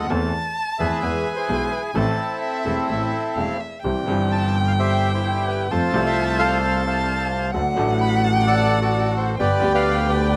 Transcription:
0.00 0.12 F#5 medium
0.05 0.10 D#2 medium
0.10 0.30 E2 medium
0.10 0.30 E3 medium
0.10 0.30 A3 medium
0.10 0.30 C4 medium
0.10 0.30 A4 medium
0.10 1.02 A5 medium
0.57 0.80 A5 medium
0.78 0.99 E2 medium
0.78 0.99 E2 soft
0.78 0.99 E3 soft
0.78 0.99 A3 soft
0.78 0.99 C4 soft
0.78 1.36 G#4 medium
0.78 0.99 A4 soft
0.78 1.68 B4 medium
0.78 1.33 E5 medium
1.02 1.22 E2 medium
1.02 1.22 E2 soft
1.02 1.22 E3 soft
1.02 1.22 G#3 soft
1.02 1.22 B3 soft
1.02 1.22 G#4 soft
1.02 1.97 G#5 medium
1.36 1.92 E4 soft
1.36 1.91 G#4 soft
1.36 1.72 C5 medium
1.49 1.68 B1 medium
1.49 1.68 B1 soft
1.49 1.68 B2 soft
1.49 1.68 E3 soft
1.49 1.68 G#3 soft
1.49 1.68 B3 soft
1.49 1.68 G#4 soft
1.71 1.81 B4 medium
1.94 2.14 A1 medium
1.94 2.15 A1 medium
1.94 2.15 A2 medium
1.94 2.15 E3 medium
1.94 2.15 A3 medium
1.94 2.15 C4 medium
1.94 3.58 C4 soft
1.94 3.58 E4 soft
1.94 3.57 A4 medium
1.94 2.15 A4 medium
1.94 2.41 A5 medium
2.42 2.86 E5 medium
2.65 2.85 E1 soft
2.65 2.85 E2 soft
2.65 2.85 E3 soft
2.65 2.85 A3 soft
2.65 2.85 C4 soft
2.65 2.86 A4 soft
2.88 3.09 A1 soft
2.88 3.09 A2 soft
2.88 3.09 E3 soft
2.88 3.09 A3 soft
2.88 3.09 C4 soft
2.88 3.10 A4 soft
2.88 3.33 E5 medium
3.37 3.57 E1 soft
3.37 3.57 E2 soft
3.37 3.57 E3 soft
3.37 3.57 A3 soft
3.37 3.57 C4 soft
3.37 3.57 A4 soft
3.37 3.62 F5 medium
3.60 3.84 E5 medium
3.84 4.04 C2 medium
3.84 4.04 C2 soft
3.84 4.04 C3 soft
3.84 4.04 E3 soft
3.84 4.04 G3 soft
3.84 4.04 C4 soft
3.84 4.04 G4 soft
3.84 5.73 G5 medium
4.06 5.62 G1 medium
4.06 5.63 G1 medium
4.06 5.63 G2 medium
4.06 5.62 E3 medium
4.06 5.62 G3 medium
4.06 5.63 C4 medium
4.06 5.64 G4 medium
4.32 4.56 A5 medium
4.56 4.61 G5 medium
4.67 4.72 F5 medium
4.79 5.12 G4 medium
4.79 5.13 C5 medium
4.79 5.11 E5 medium
5.14 5.67 E4 soft
5.14 5.67 G4 soft
5.14 5.49 C5 medium
5.48 5.69 B4 medium
5.70 5.90 F2 soft
5.70 5.90 F3 soft
5.70 5.90 A3 soft
5.70 5.90 C4 soft
5.70 6.59 F4 medium
5.70 6.04 A4 medium
5.70 5.90 A4 soft
5.70 6.03 C5 medium
5.70 6.62 A5 medium
5.92 7.46 C2 medium
5.92 7.46 C3 medium
5.92 7.45 F3 medium
5.92 7.46 A3 medium
5.92 7.47 C4 medium
5.92 7.47 A4 medium
6.06 6.38 A4 medium
6.06 6.38 C5 medium
6.06 6.41 E5 medium
6.39 7.27 A4 medium
6.39 6.85 C5 medium
6.39 6.82 F5 medium
6.62 7.50 A5 medium
6.86 7.51 C5 medium
6.86 7.51 F5 medium
6.86 7.28 A5 medium
7.53 7.74 D2 medium
7.53 7.74 D2 soft
7.53 7.73 D3 soft
7.53 7.73 F#3 soft
7.53 7.73 A3 soft
7.53 7.74 D4 soft
7.53 7.74 A4 medium
7.53 9.35 F#5 loud
7.75 9.31 A1 medium
7.75 9.31 A2 medium
7.75 9.30 F#3 medium
7.75 9.31 A3 medium
7.75 9.31 D4 medium
7.79 9.32 A4 medium
8.01 8.22 B5 medium
8.24 8.29 A5 medium
8.35 8.46 G5 medium
8.47 8.80 A4 medium
8.47 8.80 D5 medium
8.47 8.79 F#5 loud
8.81 9.35 F#4 soft
8.81 9.36 A4 soft
8.81 9.14 D5 medium
9.17 9.38 C5 medium
9.39 9.58 G1 medium
9.39 9.59 G1 soft
9.39 9.59 G2 medium
9.39 9.59 D3 soft
9.39 9.59 G3 soft
9.39 9.59 B3 soft
9.39 10.28 G4 medium
9.39 9.59 G4 soft
9.39 9.73 B4 medium
9.39 9.73 D5 medium
9.39 10.36 G5 medium
9.60 10.36 D2 medium
9.60 10.36 D3 medium
9.60 10.36 G3 medium
9.60 10.36 B3 medium
9.60 10.36 G4 medium
9.74 10.08 B4 medium
9.74 10.08 D5 medium
9.74 10.10 F5 medium
10.09 10.36 B4 medium
10.09 10.36 D5 medium
10.09 10.36 G5 medium

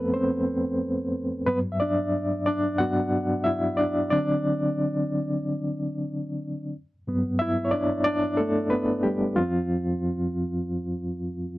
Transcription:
0.00 1.48 F2 medium
0.00 1.48 F3 medium
0.00 1.48 A3 medium
0.00 0.13 B3 medium
0.00 0.16 C4 medium
0.00 1.48 A4 medium
0.00 0.12 B4 medium
0.00 0.14 C5 loud
0.14 1.10 C4 medium
0.14 1.09 C5 medium
1.47 1.90 G2 medium
1.47 1.91 F#3 medium
1.47 1.59 B3 medium
1.47 1.58 B4 loud
1.72 1.79 E5 medium
1.80 2.43 D4 medium
1.80 2.45 D5 loud
2.46 2.77 D4 medium
2.46 2.76 D5 medium
2.78 3.08 G2 soft
2.78 3.09 F#3 soft
2.78 3.09 B3 medium
2.78 3.41 F#4 medium
2.78 3.46 F#5 loud
3.44 3.60 E4 medium
3.44 3.59 E5 loud
3.77 4.09 D4 medium
3.77 4.09 D5 loud
4.10 5.06 D3 medium
4.10 5.06 F#3 medium
4.10 5.06 C4 medium
4.10 5.39 D4 medium
4.10 5.38 D5 loud
7.07 7.51 G2 medium
7.07 7.51 F#3 medium
7.07 7.52 B3 medium
7.39 7.53 E4 medium
7.39 7.51 E5 loud
7.65 7.72 C#5 medium
7.71 8.04 D4 medium
7.71 8.03 D5 loud
8.04 8.37 D4 medium
8.04 8.36 D5 loud
8.37 8.70 A3 medium
8.37 8.72 A4 medium
8.70 9.03 B3 medium
8.70 9.05 B4 loud
9.03 9.36 G3 medium
9.03 9.38 G4 medium
9.36 9.81 F2 medium
9.36 11.32 F3 medium
9.36 9.82 C4 medium
9.36 11.31 F4 loud

